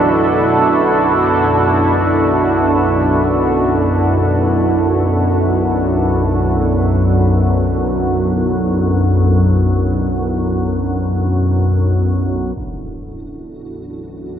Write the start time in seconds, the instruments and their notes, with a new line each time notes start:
Already playing: synth drone B1 F#2, ambient pad B2 D4 E4 F#4 A4
12.54 synth drone B1 F#2, synth texture F#4, impact